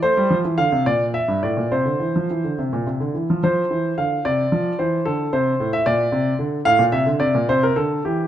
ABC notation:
X:1
M:6/8
L:1/16
Q:3/8=73
K:F
V:1 name="Grand piano"
c4 f2 d2 e2 d2 | c6 z6 | c4 f2 d4 c2 | A2 c3 e d6 |
f2 e2 d2 c B A2 G2 |]
V:2 name="Grand piano" clef=bass
A, G, F, E, D, C, B,,3 G,, A,, B,, | C, D, E, F, E, D, C, B,, C, D, E, F, | F,2 E,2 D,2 C,2 F,2 E,2 | D,2 C,2 A,,2 B,,2 C,2 D,2 |
A,, B,, C, D, C, B,, C,2 D,2 E,2 |]